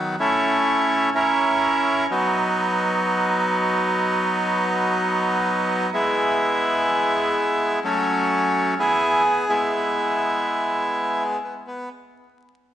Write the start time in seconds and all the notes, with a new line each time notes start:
Already playing: D#3 F#3 B3
0.19 A3 C#4 E4
1.15 C#4 E4 A#4
2.11 F#3 B3 D#4
5.94 G#3 B3 E4
7.84 F#3 A3 C#4
8.79 B3 E4 G#4
9.49 G#3 B3 E4
11.44 B3
11.67 B3